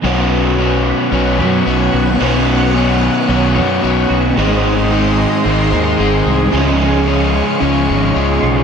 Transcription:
<<
  \new Staff \with { instrumentName = "String machine" } { \time 4/4 \key b \lydian \tempo 4 = 111 << { <cis'' fis'' cis'''>1~ | <cis'' fis'' cis'''>1 | <bis' dis'' bis''>1 | <cis'' eis'' cis'''>1 | } \\ { b'1~ | b'1 | gis'1~ | gis'1 | } >> }
  \new Staff \with { instrumentName = "Overdriven electric guitar" } { \time 4/4 \key b \lydian <b cis' fis' cis''>4 <b cis' fis' cis''>4 <b cis' fis' cis''>8 <cis' fis' cis''>8 <b cis' fis' cis''>4 | <b cis' fis' cis''>4 <b cis' fis' cis''>4 <b cis' fis' cis''>8 <cis' fis' cis''>8 <b cis' fis' cis''>4 | <gis dis' gis' bis'>4 <gis dis' gis' bis'>4 <gis dis' gis' bis'>8 <dis' gis' bis'>8 <gis dis' gis' bis'>4 | <cis eis gis cis' eis' cis''>4 <gis cis' eis' cis''>4 <cis eis gis cis' eis' cis''>8 <gis cis' eis' cis''>8 <gis cis' eis' cis''>4 | }
  \new Staff \with { instrumentName = "Clean electric guitar" } { \time 4/4 \key b \lydian b8 b8 cis'8 b8 cis'8 b8 b8 fis'8 | b8 b8 cis'8 b8 cis'8 b8 b8 fis'8 | dis8 gis8 bis8 gis8 bis8 dis8 gis8 gis'8 | gis8 gis8 cis'8 gis8 cis'8 gis8 gis8 eis'8 | }
  \new Staff \with { instrumentName = "Overdriven electric guitar" } { \clef bass \time 4/4 \key b \lydian <b, fis b cis'>1 | <b, fis b cis'>1 | <gis, dis gis bis dis'>1 | <cis eis gis cis'>1 | }
  \new Staff \with { instrumentName = "Overdriven electric guitar" } { \clef bass \time 4/4 \key b \lydian <b, fis b cis' fis'>2 <b, fis b cis' fis'>2 | <b, fis b cis' fis'>2 <b, fis b cis' fis'>2 | <gis, dis gis bis dis'>2 <gis, dis gis bis dis'>2 | <cis eis gis cis'>2 <cis eis gis cis'>2 | }
  \new Staff \with { instrumentName = "Fingered electric bass" } { \clef bass \time 4/4 \key b \lydian b,,2 b,,8 fis,8 b,,8 b,,8 | b,,2 b,,8 fis,8 b,,8 b,,8 | gis,,2 gis,,8 dis,8 gis,,8 bis,,8 | cis,2 cis,8 gis,,8 cis,8 b,,8 | }
>>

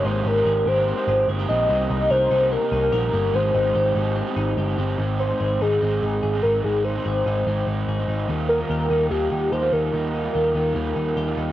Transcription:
<<
  \new Staff \with { instrumentName = "Soft synth lead" } { \time 4/4 \key aes \major \tempo 4 = 146 c''8 bes'4 c''4. r8 ees''8~ | ees''4 c''4 bes'2 | c''2 r2 | r8 c''4 aes'4 aes'8 aes'8 bes'8 |
aes'8 c''2 r4. | r8 bes'4. g'8 g'8 c''8 bes'8~ | bes'2.~ bes'8 r8 | }
  \new Staff \with { instrumentName = "Clean electric guitar" } { \time 4/4 \key aes \major <aes c' g' bes'>8 g'8 aes'16 bes'16 g'8 c'8 f'16 g'16 aes'16 bes'16 c'8 | c8 ees'8 bes'8 ees'8 bes8 ees'8 bes'8 bes8 | aes8 ees'8 g'8 ees'8 c'8 ees'8 g'8 c'8 | aes,8 ees'8 aes'8 ees'8 c'8 ees'8 aes'8 ees'8 |
aes,8 ees'8 aes'8 ees'8 c'8 ees'8 aes'8 ees'8 | ees8 ees'8 g'8 ees'8 bes8 ees'8 g'8 ees'8 | ees8 ees'8 g'8 ees'8 bes8 ees'8 g'8 ees'8 | }
  \new Staff \with { instrumentName = "Overdriven electric guitar" } { \time 4/4 \key aes \major <aes bes ees' g' c''>8. <ees' g' c''>8. <bes ees' g' c''>8. <ees' g' c''>8. <bes ees' g' c''>8 <bes ees' g' c''>8 | <c g bes ees' g'>8. <bes ees' g'>8. <g bes ees' g'>8. <bes ees' g'>8. <g bes ees' g'>8 <g bes ees' g'>8 | <aes c' ees' g'>8. <c' ees' g'>8. <aes c' ees' g'>8. <c' ees' g'>8. <aes c' ees' g'>8 <aes c' ees' g'>8 | <aes, ees aes c' ees'>8. <aes c' ees'>8. <ees aes c' ees'>8 <aes, ees aes c' ees'>4~ <aes, ees aes c' ees'>16 <aes c' ees'>8. |
<aes, ees aes c' ees'>8. <aes c' ees'>8. <ees aes c' ees'>8 <aes, ees aes c' ees'>4~ <aes, ees aes c' ees'>16 <aes c' ees'>8. | <ees g bes f'>8. <g bes f'>8. <ees g bes f'>8 <ees g bes f'>4~ <ees g bes f'>16 <g bes f'>8. | <ees g bes f'>8. <g bes f'>8. <ees g bes f'>8 <ees g bes f'>4~ <ees g bes f'>16 <g bes f'>8. | }
  \new Staff \with { instrumentName = "Picked electric bass" } { \clef bass \time 4/4 \key aes \major aes,,8 aes,,8 aes,,8 aes,,8. r16 aes,,8 g,,8 bes,,8 | c,8 c,8 c,8 c,8. r16 c,8 bes,,8 g,,8 | aes,,8 aes,,8 aes,,8 aes,,8. r16 aes,,8 g,,8 g,,8 | aes,,4 aes,,8 aes,,8 aes,,8 aes,,8 aes,,8 aes,,8 |
aes,,4 aes,,8 aes,,8 aes,,8 aes,,8 aes,,8 aes,,8 | ees,4 ees,8 ees,8 ees,8 ees,8 ees,8 ees,8 | ees,4 ees,8 ees,8 ees,8 ees,8 ees,8 ees,8 | }
>>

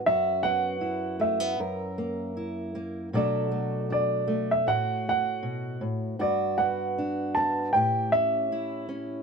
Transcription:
<<
  \new Staff \with { instrumentName = "Upright piano" } { \time 4/4 \key fis \phrygian \tempo 4 = 78 e''8 fis''4 e''2 r8 | d''4 d''8. e''16 fis''8 fis''4 r8 | d''8 fis''4 a''8 g''8 e''4 r8 | }
  \new Staff \with { instrumentName = "Steel-string acoustic guitar" } { \time 4/4 \key fis \phrygian << { fis'8 b8 e'8 a16 b16 ais'8 ais8 e'8 ais8 | <fis a d' a'>8 a8 d'8 a8 fis'2 | fis'8 b8 d'8 b8 g'8 cis'8 e'8 cis'8 | } \\ { fis,2 fis,2 | b,2 a,4 b,8 a,8 | g,2 a,2 | } >> }
>>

